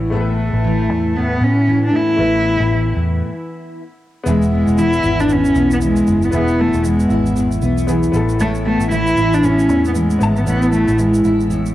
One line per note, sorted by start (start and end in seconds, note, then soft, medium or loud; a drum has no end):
0.00 0.49 A1 medium
0.00 0.11 A2 medium
0.00 0.64 E3 medium
0.00 0.15 B3 medium
0.00 0.13 E4 medium
0.10 1.15 A2 medium
0.10 2.14 A3 medium
0.10 1.18 A3 medium
0.10 2.15 B3 medium
0.10 2.15 E4 medium
0.10 2.20 E4 medium
0.14 0.20 A4 medium
0.21 2.19 B4 medium
0.53 0.89 A1 medium
0.64 1.67 E3 medium
0.89 1.37 E2 medium
1.16 2.18 A2 medium
1.16 1.45 B3 medium
1.41 1.89 A2 medium
1.41 3.79 B3 medium
1.41 1.84 C#4 medium
1.67 2.70 E3 medium
1.85 1.97 D4 medium
1.93 3.29 A3 medium
1.93 2.98 E4 loud
2.16 2.57 A1 loud
2.16 3.29 A2 medium
2.16 3.19 A3 medium
2.16 3.20 B3 medium
2.16 3.20 E4 medium
2.16 3.79 E4 medium
2.16 3.21 B4 medium
2.60 2.94 A1 loud
2.71 3.79 E3 medium
2.97 3.20 E2 medium
4.23 4.64 E1 loud
4.23 5.29 E2 medium
4.23 6.28 B3 medium
4.23 6.29 E4 medium
4.23 5.03 E4 medium
4.23 shaker medium
4.28 4.51 G#3 medium
4.28 6.30 G#4 medium
4.42 shaker soft
4.52 4.80 G#3 medium
4.52 5.56 B3 medium
4.67 5.01 E1 medium
4.67 shaker soft
4.78 5.82 E3 medium
4.78 5.22 E4 loud
4.78 shaker medium
4.93 shaker medium
5.03 5.51 G#1 medium
5.03 6.34 E4 medium
5.03 shaker soft
5.20 5.34 D4 medium
5.20 shaker soft
5.29 6.33 E2 medium
5.29 5.72 C#4 loud
5.29 shaker medium
5.45 shaker soft
5.55 6.03 B1 medium
5.55 6.59 B3 medium
5.55 shaker soft
5.71 5.77 B3 medium
5.71 shaker medium
5.81 6.84 E3 medium
5.81 6.26 G#3 medium
5.81 shaker medium
5.96 shaker medium
6.07 6.31 F#1 medium
6.07 shaker soft
6.22 6.34 B3 medium
6.22 shaker medium
6.31 6.71 E1 loud
6.31 7.35 E2 medium
6.31 7.84 B3 medium
6.31 6.62 B3 medium
6.31 7.85 E4 medium
6.31 7.10 E4 medium
6.31 7.86 G#4 medium
6.31 shaker medium
6.48 shaker soft
6.59 6.87 A3 medium
6.59 7.61 B3 medium
6.73 7.08 E1 loud
6.73 shaker soft
6.84 7.87 E3 medium
6.84 7.37 G#3 medium
6.84 shaker medium
7.00 shaker soft
7.10 7.58 G#1 medium
7.10 8.40 E4 medium
7.10 shaker soft
7.26 shaker soft
7.36 8.14 E2 medium
7.36 shaker medium
7.51 shaker medium
7.62 8.10 B1 medium
7.62 8.42 B3 medium
7.62 shaker medium
7.78 shaker medium
7.87 8.91 E3 medium
7.87 8.10 B3 medium
7.87 8.12 E4 medium
7.87 8.14 G#4 medium
7.87 shaker medium
8.03 shaker medium
8.12 8.77 A1 loud
8.12 8.38 A2 medium
8.12 10.16 B3 medium
8.12 10.17 E4 medium
8.12 10.18 A4 medium
8.12 shaker medium
8.29 shaker medium
8.39 9.42 A2 medium
8.39 8.52 A3 loud
8.39 9.17 E4 medium
8.39 shaker medium
8.55 shaker soft
8.65 8.90 A3 loud
8.65 9.69 B3 medium
8.80 9.14 A1 loud
8.80 shaker soft
8.91 9.94 E3 medium
8.91 9.36 E4 loud
8.91 shaker medium
9.07 shaker medium
9.17 9.69 A1 medium
9.17 10.47 E4 medium
9.17 shaker soft
9.33 9.46 D4 loud
9.33 shaker soft
9.43 10.45 A2 medium
9.43 9.85 C#4 loud
9.43 shaker medium
9.59 shaker medium
9.69 10.17 E2 medium
9.69 10.72 B3 medium
9.69 shaker medium
9.85 9.96 B3 medium
9.85 shaker medium
9.95 10.98 E3 medium
9.95 10.40 G#3 medium
9.95 shaker medium
10.10 shaker medium
10.19 10.45 G#1 medium
10.19 11.75 B3 medium
10.19 11.75 E4 medium
10.19 shaker soft
10.23 11.75 A5 medium
10.36 10.48 B3 medium
10.36 shaker soft
10.46 10.85 A1 loud
10.46 11.49 A2 medium
10.46 10.72 B3 loud
10.46 11.25 E4 medium
10.46 shaker medium
10.62 shaker soft
10.72 11.02 A3 medium
10.72 11.75 B3 medium
10.72 shaker soft
10.88 11.22 A1 medium
10.88 shaker soft
10.98 11.75 E3 medium
10.98 11.51 G#3 medium
10.98 shaker medium
11.14 shaker medium
11.24 11.72 A1 medium
11.24 11.75 E4 medium
11.24 shaker soft
11.40 shaker soft
11.50 11.75 A2 medium
11.50 shaker medium
11.66 shaker medium